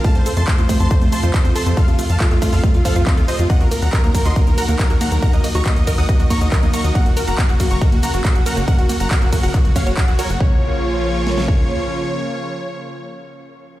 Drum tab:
RD |----------------|----------------|--x---x---x---x-|--x---x---x---x-|
HH |xxoxxxoxxxoxxxox|xxoxxxooxxoxxxox|xxoxxxoxxxoxxxox|xxoxxxooxxoxxxox|
SH |xxxxxxxxxxxxxxxx|xxxxxxxxxxxxxxxx|xxxxxxxxxxxxxxxx|xxxxxxxxxxxxxxxx|
CP |----x-------x---|----x-------x---|----x-------x---|----x-------x---|
SD |----------------|----------------|----------------|----------------|
BD |o---o-o-o---o---|o---o-o-o-o-o---|o---o-o-o---o---|o---o-o-o-o-o---|

RD |--x---x---x---x-|--x---x---x---x-|----------------|----------------|
HH |xxoxxxoxxxoxxxo-|xxoxxxooxxoxxxox|----------------|----------------|
SH |xxxxxxxxxxxxxxxx|xxxxxxxxxxxxxxxx|----------------|----------------|
CP |----x-------x---|----x---x---x---|----------------|----------------|
SD |----------------|----------------|--------oo------|----------------|
BD |o---o-o-o---o---|o---o-o-o-o-o---|o---------o-----|----------------|